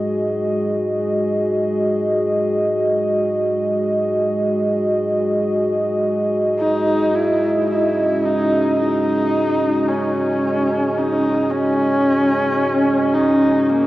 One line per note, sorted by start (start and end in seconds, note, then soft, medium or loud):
0.00 13.87 G#3 medium
0.00 13.87 F#4 medium
0.00 13.87 G#4 medium
0.00 13.87 D#5 medium
6.58 7.16 D#4 loud
7.15 7.68 E4 loud
7.71 8.27 E4 medium
7.84 13.87 C#4 medium
8.25 8.78 D#4 medium
8.80 9.90 D#4 medium
9.89 10.99 C#4 medium
10.98 11.52 D#4 medium
11.51 13.15 C#4 loud
13.14 13.70 D#4 medium
13.69 13.87 A#3 medium